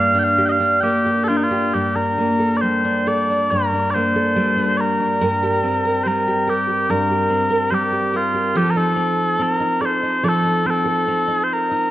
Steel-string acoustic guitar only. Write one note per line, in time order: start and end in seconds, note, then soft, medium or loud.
0.00 1.73 G2 medium
0.00 0.82 A#3 medium
0.00 0.14 D4 medium
0.00 0.38 G4 soft
0.14 0.59 D4 soft
0.38 1.06 G4 medium
0.60 1.29 D4 medium
0.83 2.18 A#3 medium
1.06 1.51 G4 medium
1.30 1.95 D4 medium
1.51 2.39 G4 soft
1.74 3.50 G2 medium
1.96 2.84 D4 soft
2.18 3.95 A#3 soft
2.39 3.05 A4 soft
2.63 4.36 G3 soft
2.85 3.29 D4 medium
3.07 3.51 A4 medium
3.30 3.72 D4 soft
3.51 5.20 G2 medium
3.73 4.56 D4 soft
3.95 5.63 A#3 medium
4.16 4.79 A4 medium
4.36 6.05 G3 medium
4.57 4.99 D4 soft
5.00 5.30 D4 soft
5.21 6.89 G2 medium
5.21 5.84 A#4 medium
5.43 6.26 G4 soft
5.63 7.29 C4 medium
5.85 6.46 A#4 medium
6.05 7.70 G3 medium
6.28 6.68 G4 medium
6.47 6.89 A#4 medium
6.69 7.10 G4 soft
6.90 8.64 G2 medium
6.90 7.49 A#4 medium
7.11 7.91 G4 soft
7.30 8.96 C4 medium
7.50 8.12 A#4 medium
7.72 8.55 G3 medium
7.92 8.33 G4 soft
8.14 8.55 A#4 medium
8.34 8.63 G4 soft
8.55 10.23 F3 medium
8.55 9.18 A4 medium
8.76 9.59 D#4 medium
8.96 9.38 C4 medium
9.39 10.64 C4 medium
9.60 10.02 D#4 medium
9.81 10.23 A4 medium
10.03 10.43 D#4 soft
10.23 11.91 F3 medium
10.23 10.84 A4 medium
10.44 11.27 D#4 medium
10.66 11.07 C4 medium
10.85 11.49 A4 medium
11.08 11.91 C4 medium
11.28 11.70 D#4 medium
11.71 11.91 D#4 soft